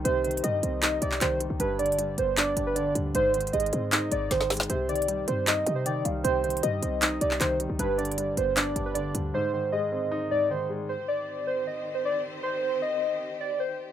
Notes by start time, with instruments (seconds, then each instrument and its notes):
Already playing: grand piano C3 D#3 G3 C4 D#4
0.04 808-style bass C2, grand piano C3, synth keys C5, closed hi-hat
0.24 grand piano D#3, synth keys C5, closed hi-hat
0.31 closed hi-hat
0.37 closed hi-hat
0.43 808-style bass G2, grand piano G3, synth keys D#5, closed hi-hat
0.63 808-style bass C2, grand piano C4, closed hi-hat
0.82 grand piano D#4, clap, closed hi-hat
1.02 808-style bass C2, grand piano C3, synth keys D5, closed hi-hat
1.12 clap
1.21 808-style bass C2, grand piano D#3, synth keys C5, clap, closed hi-hat
1.40 grand piano G3, closed hi-hat
1.50 808-style bass C2
1.60 808-style bass G1, grand piano G2, synth keys B4, closed hi-hat
1.79 grand piano D3, synth keys D5, closed hi-hat
1.86 closed hi-hat
1.92 closed hi-hat
1.99 grand piano G3, closed hi-hat
2.18 808-style bass G1, grand piano B3, synth keys C5, closed hi-hat
2.37 grand piano D4, synth keys D5, clap, closed hi-hat
2.57 808-style bass G1, grand piano G2, closed hi-hat
2.67 synth keys B4
2.75 grand piano D3, synth keys D5, closed hi-hat
2.95 808-style bass D2, grand piano G3, closed hi-hat
3.15 808-style bass G#1, grand piano G#2, synth keys C5, closed hi-hat
3.34 grand piano D#3, synth keys C5, closed hi-hat
3.41 closed hi-hat
3.47 closed hi-hat
3.53 808-style bass G#1, grand piano G#3, synth keys D#5, closed hi-hat
3.60 closed hi-hat
3.66 closed hi-hat
3.73 808-style bass G#2, grand piano C4, closed hi-hat
3.92 grand piano D#4, clap, closed hi-hat
4.12 808-style bass G#1, grand piano G#2, synth keys D5, closed hi-hat
4.31 808-style bass G#1, grand piano D#3, synth keys C5, snare, closed hi-hat
4.41 snare
4.50 grand piano G#3, snare, closed hi-hat, open hi-hat
4.57 snare, closed hi-hat
4.63 closed hi-hat
4.70 808-style bass C2, grand piano C3, synth keys C5, closed hi-hat
4.89 grand piano D#3, synth keys D5, closed hi-hat
4.96 closed hi-hat
5.02 closed hi-hat
5.08 grand piano G3, closed hi-hat
5.28 808-style bass G2, grand piano C4, synth keys C5, closed hi-hat
5.47 grand piano D#4, synth keys D#5, clap, closed hi-hat
5.66 grand piano C3, 808-style bass C3, closed hi-hat
5.75 synth keys C5
5.86 grand piano D#3, synth keys D5, soft synth lead G5, closed hi-hat
6.05 808-style bass C2, grand piano G3, soft synth lead F5, closed hi-hat
6.24 808-style bass C2, grand piano C3, synth keys C5, soft synth lead G5, closed hi-hat
6.44 grand piano D#3, synth keys C5, closed hi-hat
6.50 closed hi-hat
6.57 closed hi-hat
6.63 808-style bass G2, grand piano G3, synth keys D#5, closed hi-hat
6.83 808-style bass C2, grand piano C4, closed hi-hat
7.02 grand piano D#4, clap, closed hi-hat
7.21 808-style bass C2, grand piano C3, synth keys D5, closed hi-hat
7.31 clap
7.40 808-style bass C2, grand piano D#3, synth keys C5, clap, closed hi-hat
7.60 grand piano G3, closed hi-hat
7.70 808-style bass C2
7.79 808-style bass G1, grand piano G2, synth keys B4, closed hi-hat
7.98 grand piano D3, synth keys D5, closed hi-hat
8.05 closed hi-hat
8.11 closed hi-hat
8.18 grand piano G3, closed hi-hat
8.37 808-style bass G1, grand piano B3, synth keys C5, closed hi-hat
8.57 grand piano D4, synth keys D5, clap, closed hi-hat
8.76 808-style bass G1, grand piano G2, closed hi-hat
8.86 synth keys B4
8.94 grand piano D3, synth keys D5, closed hi-hat
9.15 808-style bass D2, grand piano G3, closed hi-hat
9.34 grand piano G#2, synth keys C5
9.53 grand piano D#3, synth keys C5
9.72 grand piano G#3, synth keys D#5
9.92 grand piano C4
10.12 grand piano D#4
10.31 grand piano G#2, synth keys D5
10.50 grand piano D#3, synth keys C5
10.69 grand piano G#3
10.89 string section D#3 C4 G4 C5, synth keys C5
11.08 synth keys D5
11.47 synth keys C5
11.67 synth keys D#5
11.95 synth keys C5
12.05 synth keys D5
12.43 synth keys C5
12.63 synth keys C5
12.82 synth keys D#5
13.41 synth keys D5
13.60 synth keys C5